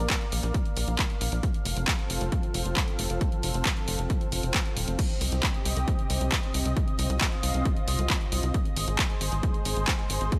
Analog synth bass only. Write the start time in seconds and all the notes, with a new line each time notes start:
0.32 A#1
0.43 A#1
0.77 A#1
0.88 A#1
1.21 A#1
1.32 A#1
1.65 F1
1.77 F1
2.10 F1
2.21 F1
2.54 F1
2.65 F1
2.99 F1
3.10 F1
3.43 F1
3.54 F1
3.88 F1
3.99 F1
4.32 F1
4.43 F1
4.76 D#1
4.88 F1
5.21 C2
5.32 C2
5.65 C2
5.77 C2
6.10 C2
6.21 C2
6.54 C2
6.65 C2
6.99 C2
7.10 C2
7.43 C2
7.54 C2
7.88 C2
7.99 C2
8.32 C2
8.43 C2
8.77 G#1
8.88 G#1
9.21 G#1
9.32 G#1
9.65 G#1
9.77 G#1
10.10 G#1
10.21 G#1